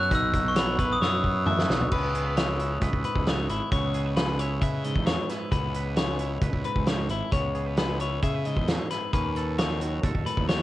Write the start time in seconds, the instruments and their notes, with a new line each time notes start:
Already playing: clean electric guitar F#3 B3 E4 C#5
0.03 glockenspiel F#6
0.11 fingered electric bass B1, clean electric guitar B2 D#4, kick, closed hi-hat
0.15 glockenspiel E6
0.33 clean electric guitar F#3, kick, closed hi-hat
0.48 glockenspiel C#6
0.56 clean electric guitar B3 C#5, glockenspiel B5, snare, closed hi-hat
0.79 clean electric guitar E4 B4, kick, closed hi-hat
0.93 glockenspiel D#6
1.01 fingered electric bass F#2, clean electric guitar B2 C#5, glockenspiel E6, snare
1.24 clean electric guitar B3, kick
1.46 clean electric guitar A2 E5, mid tom
1.59 snare
1.69 fingered electric bass B1, clean electric guitar B2 C#5, snare
1.81 floor tom
1.92 fingered electric bass C#2, clean electric guitar C#3 B3 B4, kick, crash
2.15 clean electric guitar G#4, closed hi-hat
2.26 clean electric guitar B4
2.37 clean electric guitar G#3 C#5, snare, closed hi-hat
2.59 clean electric guitar E4, closed hi-hat
2.81 fingered electric bass C#2, clean electric guitar B4, kick, closed hi-hat
2.93 fingered electric bass C#2, kick
3.04 clean electric guitar G#2 B4, closed hi-hat
3.16 fingered electric bass C#2, kick
3.26 clean electric guitar C#5, snare, closed hi-hat
3.49 fingered electric bass G#1, clean electric guitar E4, closed hi-hat
3.72 fingered electric bass C#2, clean electric guitar C#3 B3 C#5, kick, closed hi-hat
3.94 clean electric guitar G#4, closed hi-hat
4.06 clean electric guitar B4
4.17 clean electric guitar G#3 B4, snare, closed hi-hat
4.39 clean electric guitar E4 C#5, closed hi-hat
4.61 fingered electric bass C#3, clean electric guitar B4 E5, kick, closed hi-hat
4.84 clean electric guitar G#2 D#5, closed hi-hat
4.95 fingered electric bass E2, kick
5.06 clean electric guitar C#5, snare, closed hi-hat
5.29 clean electric guitar E4 B4, snare, closed hi-hat
5.51 fingered electric bass C#2, clean electric guitar C#3 B3 B4, kick, closed hi-hat
5.74 clean electric guitar B4, closed hi-hat
5.96 clean electric guitar G#3 C#5, snare, closed hi-hat
6.19 clean electric guitar E4, closed hi-hat
6.41 fingered electric bass C#2, clean electric guitar B4, kick, closed hi-hat
6.53 fingered electric bass C#2, kick
6.64 clean electric guitar G#2 B4, closed hi-hat
6.76 fingered electric bass C#2, kick
6.86 clean electric guitar C#5, snare, closed hi-hat
7.09 fingered electric bass G#1, clean electric guitar E4, closed hi-hat
7.32 fingered electric bass C#2, clean electric guitar C#3 B3 C#5, kick, closed hi-hat
7.55 clean electric guitar G#4, closed hi-hat
7.66 clean electric guitar B4
7.77 clean electric guitar G#3 B4, snare, closed hi-hat
8.00 clean electric guitar E4 C#5, closed hi-hat
8.22 fingered electric bass C#3, clean electric guitar G#4 E5, kick, closed hi-hat
8.34 clean electric guitar B4
8.45 clean electric guitar G#2 D#5, closed hi-hat
8.57 fingered electric bass E2, kick
8.68 clean electric guitar C#5, snare, closed hi-hat
8.90 clean electric guitar E4 B4, snare, closed hi-hat
9.13 fingered electric bass D#2, clean electric guitar D#3 C#4 B4, kick, closed hi-hat
9.36 clean electric guitar A4, closed hi-hat
9.58 clean electric guitar F#3 C#5, snare, closed hi-hat
9.81 clean electric guitar F#4, closed hi-hat
10.03 fingered electric bass D#2, clean electric guitar A4, kick, closed hi-hat
10.15 fingered electric bass D#2, kick
10.25 clean electric guitar A2 B4, closed hi-hat
10.37 fingered electric bass D#2, kick
10.48 clean electric guitar C#5, snare, closed hi-hat